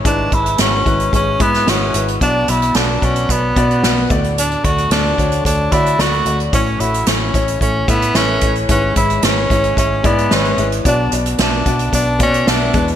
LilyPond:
<<
  \new Staff \with { instrumentName = "Upright piano" } { \time 4/4 \key b \dorian \tempo 4 = 111 <gis e' b'>8 <gis e' b'>8 <gis e' fis'>8 <gis e' b'>8 <gis e' gis'>8 <gis e' b'>8 <gis e' fis'>8 <gis e' b'>8 | <b fis' d''>8 <b fis' d''>8 <b fis' a'>8 <b fis' d''>8 <b fis' d''>8 <b fis' d''>8 <b fis' b'>8 <a fis' d''>8~ | <a fis' d''>8 <a fis' d''>8 <a fis' d''>8 <a fis' cis''>8 <a fis' cis''>8 <a fis' d''>8 <a fis' d''>8 <a fis' d''>8 | <a e' cis''>8 <a e' fis'>8 <a e' cis''>8 <a e' cis''>8 <a e' cis''>8 <a e' e''>8 <a e' b'>8 <a e' cis''>8 |
<gis e' b'>8 <gis e' cis''>8 <gis e' b'>8 <gis e' cis''>8 <gis e' gis'>8 <gis e' d''>8 <gis e' b'>8 <gis e' b'>8 | <b fis' d''>8 <b fis' d''>8 <b fis' e''>8 <b fis' d''>8 <b fis' d''>8 <b fis' d''>8 <b fis' e''>8 <gis e' b'>8 | }
  \new Staff \with { instrumentName = "Upright piano" } { \clef bass \time 4/4 \key b \dorian gis,4. r2 r8 | <b, fis>4. r2 a,8~ | a,4 r2. | <a, e>4. r2 r8 |
gis,4. r2 r8 | <b, fis>4. r2 b,8 | }
  \new Staff \with { instrumentName = "Tenor saxophone" } { \time 4/4 \key b \dorian d'8 e'8 cis'4 cis'8 b8 cis'8. r16 | d'8 e'8 d'8 cis'8 b4. r8 | d'8 fis'8 d'4 d'8 e'8 fis'8. r16 | cis'8 e'8 cis'4 cis'8 b8 cis'8. r16 |
cis'8 e'8 cis'4 cis'8 b8 cis'8. r16 | d'8 r8 d'4 d'8 cis'8 d'8. r16 | }
  \new Staff \with { instrumentName = "Fingered electric bass" } { \clef bass \time 4/4 \key b \dorian gis,,8 gis,,8 gis,,8 gis,,8 gis,,8 gis,8 gis,,8 gis,,8 | b,,8 b,,8 b,,8 b,,8 b,,8 b,8 b,,8 d,8~ | d,8 d,8 d,8 d,8 d,8 d8 d,8 d,8 | a,,8 a,,8 a,,8 a,,8 a,,8 a,8 a,,8 a,,8 |
gis,,8 gis,,8 gis,,8 gis,,8 gis,,8 gis,8 gis,,8 gis,,8 | b,,8 b,,8 b,,8 b,,8 b,,8 b,8 b,,8 e,8 | }
  \new DrumStaff \with { instrumentName = "Drums" } \drummode { \time 4/4 <hh bd>8 <hh bd>16 hh16 <hh sn>8 <hh bd>16 hh16 <hh bd>8 <hh bd>16 <hh sn>16 <hh sn>8 hh16 hh16 | <hh bd>8 hh16 hh16 <hh sn>8 <hh bd>16 hh16 <hh bd>8 <hh bd>16 hh16 <hh sn>8 <hh bd>16 hh16 | hh16 hh16 <hh bd>16 hh16 <hh sn>8 <hh bd>16 hh16 <hh bd>8 <hh bd>16 hh16 <hh sn>16 hh16 hh16 hh16 | <hh bd>16 hh16 hh16 hh16 <hh sn>8 <hh bd>16 hh16 <hh bd>8 <hh bd>16 hh16 <hh sn>8 <hh bd>16 hh16 |
<hh bd>8 <hh bd>16 hh16 <hh sn>8 <hh bd>16 hh16 <hh bd>8 <hh bd>16 hh16 <hh sn>16 hh16 hh16 hh16 | <hh bd>8 hh16 hh16 <hh sn>8 <hh bd>16 hh16 <hh bd>8 <hh bd>16 hh16 <hh sn>8 <hh bd>16 hh16 | }
>>